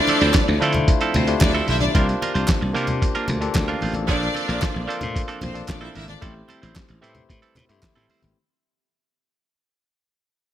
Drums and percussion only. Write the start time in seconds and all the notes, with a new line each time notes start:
0.08 closed hi-hat, muted conga
0.21 closed hi-hat
0.34 kick, snare, clap, closed hi-hat, high conga
0.62 closed hi-hat
0.73 closed hi-hat, low conga
0.88 kick, closed hi-hat
1.01 closed hi-hat
1.14 closed hi-hat, muted conga, low conga
1.27 closed hi-hat
1.40 kick, snare, clap, closed hi-hat, high conga
1.68 open hi-hat, high conga
1.81 closed hi-hat, high conga
1.95 kick, closed hi-hat, muted conga
2.09 closed hi-hat
2.22 closed hi-hat, muted conga
2.36 closed hi-hat
2.48 kick, snare, clap, closed hi-hat, high conga
2.76 closed hi-hat
2.87 closed hi-hat, low conga
3.02 kick, closed hi-hat
3.15 closed hi-hat
3.28 closed hi-hat, muted conga, low conga
3.42 closed hi-hat
3.54 kick, snare, clap, closed hi-hat, high conga
3.81 open hi-hat, high conga
3.94 closed hi-hat, high conga
4.08 kick, closed hi-hat, muted conga
4.23 closed hi-hat
4.35 closed hi-hat, muted conga
4.50 closed hi-hat
4.61 kick, snare, clap, closed hi-hat, high conga
4.90 closed hi-hat
5.01 closed hi-hat, low conga
5.16 kick, closed hi-hat
5.29 closed hi-hat
5.41 closed hi-hat, muted conga, low conga
5.55 closed hi-hat
5.67 kick, snare, clap, closed hi-hat, high conga
5.95 open hi-hat, high conga
6.08 closed hi-hat, high conga
6.22 kick, closed hi-hat, muted conga
6.49 closed hi-hat, muted conga
6.63 closed hi-hat
6.75 kick, snare, clap, closed hi-hat, high conga
6.89 closed hi-hat
7.04 closed hi-hat
7.15 closed hi-hat, low conga
7.30 kick, closed hi-hat
7.43 closed hi-hat
7.55 clap, closed hi-hat, low conga
7.69 closed hi-hat
7.82 kick, snare, clap, closed hi-hat, high conga
7.98 closed hi-hat
8.09 open hi-hat, high conga
8.22 closed hi-hat, high conga